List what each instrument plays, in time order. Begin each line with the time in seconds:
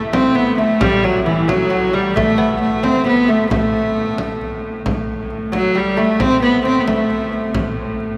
Already playing: hurdy-gurdy A2, lute A3
0.13 lute C4, viola da gamba C4, frame drum
0.35 lute B3, viola da gamba B3
0.58 lute A3, viola da gamba A3, frame drum
0.81 lute G3, viola da gamba G3, frame drum
1.04 lute F#3, viola da gamba F#3
1.26 viola da gamba E3, lute E3
1.48 lute F#3, viola da gamba F#3, frame drum
1.70 lute F#3
1.93 lute G3, viola da gamba G3, frame drum
2.16 lute A3, viola da gamba A3, frame drum
2.38 lute B3
2.61 viola da gamba A3
2.83 lute C4, viola da gamba C4, frame drum
3.06 lute B3, viola da gamba B3
3.28 lute A3, viola da gamba A3, frame drum
3.50 lute A3, viola da gamba A3, frame drum
4.18 frame drum
4.41 frame drum
4.85 hurdy-gurdy A2, frame drum
5.30 frame drum
5.52 lute F#3, viola da gamba F#3, frame drum
5.75 lute G3, viola da gamba G3, frame drum
5.97 lute A3, viola da gamba A3, frame drum
6.20 lute C4, viola da gamba C4, frame drum
6.42 lute B3, viola da gamba B3
6.65 lute C4, viola da gamba C4, frame drum
6.80 viola da gamba B3
6.87 viola da gamba A3, lute A3, frame drum
7.10 frame drum
7.33 frame drum
7.54 frame drum
8.00 frame drum